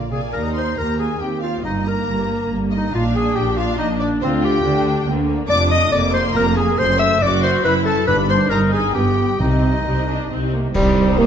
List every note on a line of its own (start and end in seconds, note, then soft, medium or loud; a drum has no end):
0.00 0.27 A#1 soft
0.00 0.12 A#3 soft
0.00 0.11 F4 medium
0.00 0.10 D5 soft
0.11 0.20 C3 soft
0.11 0.34 A#3 soft
0.11 0.21 G#4 soft
0.11 0.33 D5 soft
0.11 0.33 F5 soft
0.11 0.32 G#5 soft
0.11 0.33 G#5 soft
0.32 0.73 D#2 soft
0.32 0.75 D#4 soft
0.32 0.43 A#4 medium
0.32 0.55 A#5 soft
0.32 0.56 A#5 soft
0.54 0.80 C5 medium
0.54 0.77 C6 soft
0.76 1.16 D#2 soft
0.76 1.21 A#3 soft
0.76 0.99 A#4 medium
0.76 0.99 A#5 soft
0.99 1.22 G#4 soft
0.99 1.21 G#5 soft
0.99 1.20 G#5 soft
1.19 1.59 D#2 soft
1.19 1.65 C4 soft
1.19 1.42 G4 medium
1.19 1.27 G5 soft
1.19 1.42 G5 soft
1.41 1.64 F4 medium
1.41 1.63 F5 soft
1.41 1.64 F5 soft
1.62 2.03 G1 soft
1.62 2.03 G2 medium
1.62 2.93 A#3 soft
1.62 1.89 D#4 medium
1.62 1.85 D#5 soft
1.62 1.72 D#5 soft
1.85 2.51 A#4 medium
1.85 2.50 A#5 medium
1.85 2.49 A#5 medium
2.07 2.46 G1 soft
2.07 2.45 G2 soft
2.50 2.88 G1 soft
2.50 2.88 G2 soft
2.71 2.93 D#4 medium
2.71 2.79 D#5 soft
2.71 2.92 D#5 medium
2.92 3.31 A#1 medium
2.92 3.31 A#2 medium
2.92 4.19 D4 medium
2.92 3.04 F4 medium
2.92 3.14 F5 medium
2.92 3.15 F5 medium
3.15 3.37 G#4 medium
3.15 3.36 G#5 medium
3.35 3.73 A#1 medium
3.35 3.74 A#2 medium
3.35 3.59 G4 medium
3.35 3.57 G5 medium
3.56 3.78 F4 medium
3.56 3.78 F5 medium
3.77 4.16 A#1 medium
3.77 4.17 A#2 medium
3.77 3.88 D#4 medium
3.77 3.99 D#5 medium
3.77 3.87 D#5 medium
3.99 4.22 D4 medium
3.99 4.07 D5 medium
3.99 4.08 D5 medium
4.21 4.60 D2 medium
4.21 4.60 D3 medium
4.21 4.44 C4 medium
4.21 4.64 F4 medium
4.21 4.29 C5 medium
4.42 5.07 G4 medium
4.42 5.05 G5 medium
4.42 5.06 G5 medium
4.64 5.02 D2 medium
4.64 5.02 D3 medium
4.64 5.06 D4 medium
5.07 5.45 D2 medium
5.07 5.45 D3 medium
5.07 5.50 A#3 medium
5.48 5.88 F1 medium
5.48 5.88 F2 medium
5.48 5.93 D4 medium
5.48 5.59 D5 loud
5.48 5.69 D6 medium
5.70 5.91 D#5 medium
5.70 5.92 D#6 medium
5.70 5.93 D#6 medium
5.91 6.31 F1 medium
5.91 6.31 F2 medium
5.91 6.78 A#3 medium
5.91 6.02 D5 medium
5.91 6.13 D6 medium
5.91 6.14 D6 medium
6.14 6.24 C5 medium
6.14 6.35 C6 medium
6.14 6.36 C6 medium
6.34 6.74 F1 medium
6.34 6.74 F2 medium
6.34 6.46 A#4 medium
6.34 6.57 A#5 medium
6.56 6.80 G#4 medium
6.56 6.79 G#5 medium
6.78 7.17 F#1 medium
6.78 7.17 F#2 medium
6.78 7.22 A3 medium
6.78 6.99 C5 loud
6.78 7.00 C6 medium
6.78 6.87 C6 medium
6.99 7.23 E5 loud
6.99 7.21 E6 medium
6.99 7.22 E6 medium
7.21 7.60 F#1 medium
7.21 7.60 F#2 medium
7.21 7.64 F#4 medium
7.21 7.43 D5 medium
7.21 7.43 D6 medium
7.42 7.64 C5 medium
7.42 7.50 C6 medium
7.42 7.65 C6 medium
7.64 8.03 F#1 medium
7.64 8.03 F#2 medium
7.64 8.08 E4 medium
7.64 7.74 B4 medium
7.64 7.86 B5 medium
7.64 7.72 B5 medium
7.86 8.07 A4 medium
7.86 8.07 A5 medium
8.06 8.46 G1 medium
8.06 8.46 G2 medium
8.06 8.48 G2 medium
8.06 8.50 D4 medium
8.06 8.17 B4 medium
8.06 8.28 B5 medium
8.06 8.15 B5 medium
8.29 8.51 C5 medium
8.29 8.51 C6 medium
8.29 8.37 C6 medium
8.50 8.90 G1 medium
8.50 8.90 G2 medium
8.50 8.94 D#4 medium
8.50 8.72 A#4 medium
8.50 8.59 A#5 medium
8.72 8.94 G#4 medium
8.72 8.94 G#5 medium
8.94 9.35 G1 medium
8.94 9.35 G2 medium
8.94 9.41 B3 medium
8.94 9.39 G4 medium
8.94 9.40 G5 medium
8.94 9.39 G5 medium
9.39 9.80 C2 medium
9.39 9.80 C3 medium
9.39 10.04 C3 medium
9.39 9.80 C4 medium
9.39 10.51 D#4 medium
9.39 10.53 D#5 soft
9.39 10.53 D#5 medium
9.85 10.25 C2 medium
9.85 10.25 C3 medium
9.85 10.07 C4 medium
10.08 10.30 D4 medium
10.30 10.70 C2 medium
10.30 10.70 C3 medium
10.30 10.53 C4 medium
10.54 10.75 A#3 medium
10.74 11.27 C2 medium
10.74 11.15 G3 medium
10.74 11.16 G3 loud
10.74 11.27 D#4 medium
10.74 11.27 C5 medium
10.74 concert bass drum medium
10.74 crash medium
11.18 11.27 A#3 loud